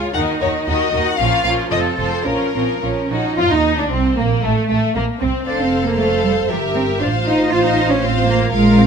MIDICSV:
0, 0, Header, 1, 6, 480
1, 0, Start_track
1, 0, Key_signature, -5, "minor"
1, 0, Tempo, 518583
1, 146, Time_signature, 2, 2, 24, 8
1, 1587, Tempo, 553506
1, 3027, Key_signature, -2, "major"
1, 3027, Tempo, 530035
1, 3987, Tempo, 511945
1, 8142, End_track
2, 0, Start_track
2, 0, Title_t, "Violin section"
2, 0, Program_c, 0, 48
2, 132, Note_on_c, 0, 78, 65
2, 206, Note_off_c, 0, 78, 0
2, 375, Note_on_c, 0, 73, 61
2, 449, Note_off_c, 0, 73, 0
2, 613, Note_on_c, 0, 75, 62
2, 971, Note_off_c, 0, 75, 0
2, 977, Note_on_c, 0, 78, 69
2, 1083, Note_on_c, 0, 77, 72
2, 1099, Note_off_c, 0, 78, 0
2, 1321, Note_off_c, 0, 77, 0
2, 1333, Note_on_c, 0, 77, 70
2, 1407, Note_off_c, 0, 77, 0
2, 1582, Note_on_c, 0, 75, 68
2, 1652, Note_off_c, 0, 75, 0
2, 1816, Note_on_c, 0, 72, 59
2, 2049, Note_on_c, 0, 70, 51
2, 2057, Note_off_c, 0, 72, 0
2, 2780, Note_off_c, 0, 70, 0
2, 3021, Note_on_c, 0, 65, 66
2, 3137, Note_off_c, 0, 65, 0
2, 3151, Note_on_c, 0, 63, 59
2, 3389, Note_on_c, 0, 62, 58
2, 3392, Note_off_c, 0, 63, 0
2, 3510, Note_off_c, 0, 62, 0
2, 3523, Note_on_c, 0, 60, 55
2, 3595, Note_off_c, 0, 60, 0
2, 3747, Note_on_c, 0, 58, 56
2, 3980, Note_on_c, 0, 57, 58
2, 3981, Note_off_c, 0, 58, 0
2, 4203, Note_off_c, 0, 57, 0
2, 4214, Note_on_c, 0, 57, 55
2, 4461, Note_off_c, 0, 57, 0
2, 4467, Note_on_c, 0, 58, 59
2, 4542, Note_off_c, 0, 58, 0
2, 4712, Note_on_c, 0, 60, 57
2, 4952, Note_off_c, 0, 60, 0
2, 4958, Note_on_c, 0, 77, 47
2, 5404, Note_off_c, 0, 77, 0
2, 5436, Note_on_c, 0, 77, 55
2, 5907, Note_off_c, 0, 77, 0
2, 5916, Note_on_c, 0, 76, 51
2, 6387, Note_off_c, 0, 76, 0
2, 6395, Note_on_c, 0, 77, 56
2, 6860, Note_off_c, 0, 77, 0
2, 6871, Note_on_c, 0, 77, 57
2, 7340, Note_off_c, 0, 77, 0
2, 7350, Note_on_c, 0, 77, 60
2, 7809, Note_off_c, 0, 77, 0
2, 7821, Note_on_c, 0, 77, 60
2, 8142, Note_off_c, 0, 77, 0
2, 8142, End_track
3, 0, Start_track
3, 0, Title_t, "Violin section"
3, 0, Program_c, 1, 48
3, 0, Note_on_c, 1, 65, 38
3, 0, Note_on_c, 1, 73, 40
3, 132, Note_on_c, 1, 70, 46
3, 133, Note_off_c, 1, 73, 0
3, 136, Note_off_c, 1, 65, 0
3, 139, Note_on_c, 1, 66, 44
3, 368, Note_off_c, 1, 66, 0
3, 373, Note_off_c, 1, 70, 0
3, 379, Note_on_c, 1, 66, 45
3, 383, Note_on_c, 1, 70, 44
3, 610, Note_off_c, 1, 66, 0
3, 613, Note_off_c, 1, 70, 0
3, 621, Note_on_c, 1, 66, 49
3, 624, Note_on_c, 1, 70, 50
3, 845, Note_off_c, 1, 66, 0
3, 846, Note_off_c, 1, 70, 0
3, 856, Note_on_c, 1, 66, 44
3, 857, Note_on_c, 1, 70, 43
3, 1085, Note_off_c, 1, 70, 0
3, 1094, Note_off_c, 1, 66, 0
3, 1096, Note_on_c, 1, 65, 52
3, 1096, Note_on_c, 1, 70, 51
3, 1330, Note_off_c, 1, 65, 0
3, 1334, Note_off_c, 1, 70, 0
3, 1341, Note_on_c, 1, 65, 48
3, 1344, Note_on_c, 1, 70, 46
3, 1579, Note_off_c, 1, 65, 0
3, 1584, Note_off_c, 1, 70, 0
3, 1590, Note_on_c, 1, 65, 47
3, 1591, Note_on_c, 1, 69, 46
3, 1811, Note_off_c, 1, 65, 0
3, 1812, Note_off_c, 1, 69, 0
3, 1821, Note_on_c, 1, 65, 39
3, 1823, Note_on_c, 1, 69, 40
3, 2053, Note_off_c, 1, 65, 0
3, 2060, Note_off_c, 1, 69, 0
3, 2064, Note_on_c, 1, 65, 42
3, 2064, Note_on_c, 1, 70, 41
3, 2298, Note_off_c, 1, 65, 0
3, 2298, Note_off_c, 1, 70, 0
3, 2308, Note_on_c, 1, 70, 37
3, 2309, Note_on_c, 1, 65, 36
3, 2535, Note_off_c, 1, 65, 0
3, 2543, Note_off_c, 1, 70, 0
3, 2546, Note_on_c, 1, 65, 44
3, 2615, Note_off_c, 1, 65, 0
3, 2785, Note_on_c, 1, 66, 44
3, 3020, Note_off_c, 1, 66, 0
3, 3023, Note_on_c, 1, 65, 65
3, 3138, Note_off_c, 1, 65, 0
3, 3142, Note_on_c, 1, 63, 58
3, 3387, Note_on_c, 1, 62, 50
3, 3388, Note_off_c, 1, 63, 0
3, 3436, Note_off_c, 1, 62, 0
3, 3502, Note_on_c, 1, 60, 60
3, 3741, Note_off_c, 1, 60, 0
3, 3750, Note_on_c, 1, 58, 53
3, 3982, Note_on_c, 1, 57, 58
3, 3987, Note_off_c, 1, 58, 0
3, 4219, Note_off_c, 1, 57, 0
3, 4230, Note_on_c, 1, 57, 57
3, 4470, Note_off_c, 1, 57, 0
3, 4477, Note_on_c, 1, 58, 60
3, 4552, Note_off_c, 1, 58, 0
3, 4713, Note_on_c, 1, 60, 53
3, 4952, Note_off_c, 1, 60, 0
3, 4964, Note_on_c, 1, 72, 48
3, 5407, Note_off_c, 1, 72, 0
3, 5439, Note_on_c, 1, 72, 52
3, 5908, Note_off_c, 1, 72, 0
3, 5916, Note_on_c, 1, 70, 51
3, 6392, Note_on_c, 1, 72, 50
3, 6397, Note_off_c, 1, 70, 0
3, 6851, Note_off_c, 1, 72, 0
3, 6862, Note_on_c, 1, 72, 57
3, 7335, Note_off_c, 1, 72, 0
3, 7347, Note_on_c, 1, 72, 59
3, 7809, Note_on_c, 1, 70, 59
3, 7815, Note_off_c, 1, 72, 0
3, 8142, Note_off_c, 1, 70, 0
3, 8142, End_track
4, 0, Start_track
4, 0, Title_t, "Cello section"
4, 0, Program_c, 2, 48
4, 0, Note_on_c, 2, 65, 45
4, 113, Note_off_c, 2, 65, 0
4, 147, Note_on_c, 2, 63, 50
4, 623, Note_on_c, 2, 66, 53
4, 625, Note_off_c, 2, 63, 0
4, 1102, Note_off_c, 2, 66, 0
4, 1105, Note_on_c, 2, 65, 58
4, 1579, Note_off_c, 2, 65, 0
4, 1589, Note_on_c, 2, 69, 61
4, 2056, Note_off_c, 2, 69, 0
4, 2065, Note_on_c, 2, 61, 49
4, 2308, Note_off_c, 2, 61, 0
4, 2309, Note_on_c, 2, 60, 54
4, 2379, Note_off_c, 2, 60, 0
4, 2548, Note_on_c, 2, 61, 50
4, 2784, Note_off_c, 2, 61, 0
4, 2791, Note_on_c, 2, 63, 61
4, 3025, Note_on_c, 2, 65, 74
4, 3028, Note_off_c, 2, 63, 0
4, 3145, Note_on_c, 2, 63, 67
4, 3148, Note_off_c, 2, 65, 0
4, 3388, Note_on_c, 2, 62, 55
4, 3389, Note_off_c, 2, 63, 0
4, 3503, Note_on_c, 2, 60, 63
4, 3507, Note_off_c, 2, 62, 0
4, 3741, Note_off_c, 2, 60, 0
4, 3745, Note_on_c, 2, 58, 62
4, 3817, Note_off_c, 2, 58, 0
4, 3980, Note_on_c, 2, 57, 66
4, 4211, Note_off_c, 2, 57, 0
4, 4223, Note_on_c, 2, 57, 63
4, 4298, Note_off_c, 2, 57, 0
4, 4473, Note_on_c, 2, 58, 61
4, 4548, Note_off_c, 2, 58, 0
4, 4711, Note_on_c, 2, 60, 64
4, 4786, Note_off_c, 2, 60, 0
4, 4954, Note_on_c, 2, 62, 70
4, 5075, Note_off_c, 2, 62, 0
4, 5077, Note_on_c, 2, 60, 70
4, 5318, Note_off_c, 2, 60, 0
4, 5323, Note_on_c, 2, 58, 62
4, 5439, Note_on_c, 2, 57, 64
4, 5441, Note_off_c, 2, 58, 0
4, 5678, Note_on_c, 2, 55, 64
4, 5679, Note_off_c, 2, 57, 0
4, 5753, Note_off_c, 2, 55, 0
4, 5917, Note_on_c, 2, 53, 68
4, 5992, Note_off_c, 2, 53, 0
4, 6156, Note_on_c, 2, 60, 70
4, 6231, Note_off_c, 2, 60, 0
4, 6393, Note_on_c, 2, 62, 65
4, 6468, Note_off_c, 2, 62, 0
4, 6636, Note_on_c, 2, 63, 79
4, 6871, Note_off_c, 2, 63, 0
4, 6876, Note_on_c, 2, 65, 90
4, 6995, Note_off_c, 2, 65, 0
4, 6996, Note_on_c, 2, 63, 80
4, 7229, Note_off_c, 2, 63, 0
4, 7242, Note_on_c, 2, 61, 73
4, 7351, Note_on_c, 2, 60, 75
4, 7357, Note_off_c, 2, 61, 0
4, 7588, Note_on_c, 2, 58, 74
4, 7589, Note_off_c, 2, 60, 0
4, 7822, Note_off_c, 2, 58, 0
4, 7827, Note_on_c, 2, 56, 87
4, 8062, Note_off_c, 2, 56, 0
4, 8062, Note_on_c, 2, 60, 84
4, 8142, Note_off_c, 2, 60, 0
4, 8142, End_track
5, 0, Start_track
5, 0, Title_t, "Viola section"
5, 0, Program_c, 3, 48
5, 0, Note_on_c, 3, 56, 41
5, 0, Note_on_c, 3, 65, 41
5, 139, Note_off_c, 3, 56, 0
5, 139, Note_off_c, 3, 65, 0
5, 142, Note_on_c, 3, 63, 50
5, 143, Note_on_c, 3, 51, 50
5, 373, Note_off_c, 3, 51, 0
5, 378, Note_off_c, 3, 63, 0
5, 384, Note_on_c, 3, 51, 45
5, 388, Note_on_c, 3, 63, 43
5, 618, Note_off_c, 3, 63, 0
5, 620, Note_off_c, 3, 51, 0
5, 629, Note_on_c, 3, 63, 47
5, 630, Note_on_c, 3, 51, 51
5, 856, Note_off_c, 3, 63, 0
5, 859, Note_off_c, 3, 51, 0
5, 867, Note_on_c, 3, 63, 45
5, 870, Note_on_c, 3, 51, 44
5, 1099, Note_off_c, 3, 63, 0
5, 1101, Note_off_c, 3, 51, 0
5, 1105, Note_on_c, 3, 61, 55
5, 1107, Note_on_c, 3, 53, 54
5, 1335, Note_off_c, 3, 53, 0
5, 1335, Note_off_c, 3, 61, 0
5, 1346, Note_on_c, 3, 53, 47
5, 1346, Note_on_c, 3, 61, 44
5, 1585, Note_off_c, 3, 53, 0
5, 1585, Note_off_c, 3, 61, 0
5, 1595, Note_on_c, 3, 60, 50
5, 1596, Note_on_c, 3, 53, 51
5, 1821, Note_off_c, 3, 53, 0
5, 1823, Note_off_c, 3, 60, 0
5, 1831, Note_on_c, 3, 53, 42
5, 1832, Note_on_c, 3, 60, 41
5, 2061, Note_off_c, 3, 53, 0
5, 2065, Note_off_c, 3, 60, 0
5, 2069, Note_on_c, 3, 61, 43
5, 2072, Note_on_c, 3, 53, 45
5, 2299, Note_off_c, 3, 53, 0
5, 2305, Note_off_c, 3, 61, 0
5, 2310, Note_on_c, 3, 53, 36
5, 2314, Note_on_c, 3, 61, 32
5, 2541, Note_off_c, 3, 53, 0
5, 2542, Note_off_c, 3, 61, 0
5, 2551, Note_on_c, 3, 53, 37
5, 2552, Note_on_c, 3, 61, 38
5, 2774, Note_off_c, 3, 61, 0
5, 2777, Note_off_c, 3, 53, 0
5, 2785, Note_on_c, 3, 61, 37
5, 2788, Note_on_c, 3, 53, 36
5, 3020, Note_off_c, 3, 61, 0
5, 3021, Note_on_c, 3, 65, 66
5, 3022, Note_off_c, 3, 53, 0
5, 3071, Note_off_c, 3, 65, 0
5, 3151, Note_on_c, 3, 63, 66
5, 3387, Note_off_c, 3, 63, 0
5, 3391, Note_on_c, 3, 62, 58
5, 3511, Note_off_c, 3, 62, 0
5, 3515, Note_on_c, 3, 60, 55
5, 3752, Note_off_c, 3, 60, 0
5, 3755, Note_on_c, 3, 58, 56
5, 3985, Note_off_c, 3, 58, 0
5, 3987, Note_on_c, 3, 57, 59
5, 4221, Note_off_c, 3, 57, 0
5, 4232, Note_on_c, 3, 57, 55
5, 4471, Note_off_c, 3, 57, 0
5, 4475, Note_on_c, 3, 58, 60
5, 4719, Note_off_c, 3, 58, 0
5, 4728, Note_on_c, 3, 60, 57
5, 4965, Note_off_c, 3, 60, 0
5, 4969, Note_on_c, 3, 69, 54
5, 5410, Note_off_c, 3, 69, 0
5, 5441, Note_on_c, 3, 69, 54
5, 5909, Note_off_c, 3, 69, 0
5, 5921, Note_on_c, 3, 67, 55
5, 6399, Note_on_c, 3, 65, 56
5, 6400, Note_off_c, 3, 67, 0
5, 6877, Note_off_c, 3, 65, 0
5, 6889, Note_on_c, 3, 65, 61
5, 7341, Note_off_c, 3, 65, 0
5, 7352, Note_on_c, 3, 65, 61
5, 7812, Note_off_c, 3, 65, 0
5, 7823, Note_on_c, 3, 65, 62
5, 8142, Note_off_c, 3, 65, 0
5, 8142, End_track
6, 0, Start_track
6, 0, Title_t, "Double bass section"
6, 0, Program_c, 4, 48
6, 150, Note_on_c, 4, 39, 53
6, 224, Note_off_c, 4, 39, 0
6, 391, Note_on_c, 4, 39, 47
6, 465, Note_off_c, 4, 39, 0
6, 629, Note_on_c, 4, 39, 56
6, 703, Note_off_c, 4, 39, 0
6, 874, Note_on_c, 4, 39, 54
6, 948, Note_off_c, 4, 39, 0
6, 1108, Note_on_c, 4, 34, 60
6, 1182, Note_off_c, 4, 34, 0
6, 1348, Note_on_c, 4, 34, 49
6, 1422, Note_off_c, 4, 34, 0
6, 1593, Note_on_c, 4, 29, 51
6, 1663, Note_off_c, 4, 29, 0
6, 1831, Note_on_c, 4, 29, 47
6, 1900, Note_off_c, 4, 29, 0
6, 2075, Note_on_c, 4, 34, 45
6, 2144, Note_off_c, 4, 34, 0
6, 2314, Note_on_c, 4, 34, 36
6, 2384, Note_off_c, 4, 34, 0
6, 2551, Note_on_c, 4, 34, 41
6, 2621, Note_off_c, 4, 34, 0
6, 2791, Note_on_c, 4, 34, 43
6, 2860, Note_off_c, 4, 34, 0
6, 3029, Note_on_c, 4, 41, 66
6, 3078, Note_off_c, 4, 41, 0
6, 3157, Note_on_c, 4, 39, 59
6, 3390, Note_off_c, 4, 39, 0
6, 3396, Note_on_c, 4, 38, 57
6, 3514, Note_off_c, 4, 38, 0
6, 3514, Note_on_c, 4, 36, 58
6, 3747, Note_off_c, 4, 36, 0
6, 3753, Note_on_c, 4, 34, 59
6, 3984, Note_off_c, 4, 34, 0
6, 3995, Note_on_c, 4, 33, 59
6, 4070, Note_off_c, 4, 33, 0
6, 4237, Note_on_c, 4, 33, 54
6, 4312, Note_off_c, 4, 33, 0
6, 4476, Note_on_c, 4, 34, 55
6, 4551, Note_off_c, 4, 34, 0
6, 4721, Note_on_c, 4, 36, 58
6, 4796, Note_off_c, 4, 36, 0
6, 4962, Note_on_c, 4, 29, 51
6, 5881, Note_off_c, 4, 29, 0
6, 5922, Note_on_c, 4, 31, 54
6, 6400, Note_off_c, 4, 31, 0
6, 6400, Note_on_c, 4, 33, 61
6, 7829, Note_off_c, 4, 33, 0
6, 7829, Note_on_c, 4, 34, 64
6, 8142, Note_off_c, 4, 34, 0
6, 8142, End_track
0, 0, End_of_file